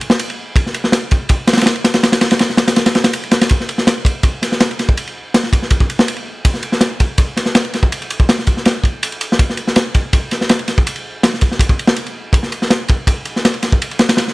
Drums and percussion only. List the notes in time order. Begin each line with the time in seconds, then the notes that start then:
0.01 ride
0.10 snare
0.19 ride
0.30 ride
0.56 kick, ride
0.66 snare
0.74 ride
0.84 snare
0.92 snare, ride
1.11 kick, ride
1.29 kick, ride
1.47 snare, ride
1.53 snare, ride
1.57 snare, ride
1.61 snare, ride
1.66 snare, ride
1.76 ride
1.84 snare, ride
1.94 snare, ride
2.03 snare, ride
2.12 snare, ride
2.21 snare, ride
2.31 snare, ride
2.39 snare, ride
2.50 snare
2.57 snare, ride
2.68 snare, ride
2.76 snare, ride
2.86 snare, ride
2.95 snare, ride
3.04 snare, ride
3.13 ride
3.23 ride
3.31 snare, ride
3.41 snare, ride
3.49 kick, ride
3.60 snare
3.69 ride
3.78 snare
3.87 snare, ride
4.05 kick, ride
4.23 kick, ride
4.42 snare, ride
4.52 snare
4.60 snare, ride
4.71 ride
4.79 snare, ride
4.89 kick
4.97 ride
5.07 ride
5.34 snare, ride
5.43 snare
5.53 kick, ride
5.62 snare
5.70 kick, ride
5.80 kick
5.90 ride
5.99 snare
6.08 ride
6.16 ride
6.45 kick, ride
6.54 snare
6.63 ride
6.72 snare
6.81 snare, ride
7.00 kick, ride
7.18 kick, ride
7.37 snare, ride
7.46 snare
7.55 snare, ride
7.65 ride
7.74 snare, ride
7.83 kick
7.92 ride
8.02 ride
8.10 ride
8.20 kick
8.29 snare, ride
8.39 snare
8.47 kick, ride
8.57 snare
8.65 snare, ride
8.84 kick, ride
9.03 ride
9.12 ride
9.21 ride
9.32 snare
9.39 kick, ride
9.50 snare
9.57 ride
9.67 snare
9.76 snare, ride
9.94 kick, ride
10.13 kick, ride
10.31 snare, ride
10.41 snare
10.49 snare, ride
10.59 ride
10.68 snare, ride
10.78 kick
10.87 ride
10.96 ride
11.23 snare, ride
11.34 snare
11.41 kick, ride
11.52 snare
11.59 kick, ride
11.69 kick
11.79 ride
11.87 snare
11.96 ride
12.06 ride
12.33 kick, ride
12.43 snare
12.52 ride
12.62 snare
12.70 snare, ride
12.88 kick, ride
13.07 kick, ride
13.25 ride
13.36 snare
13.45 snare, ride
13.54 ride
13.63 snare, ride
13.72 kick
13.82 ride
13.91 ride
13.99 snare, ride
14.09 snare, ride
14.17 snare, ride
14.28 snare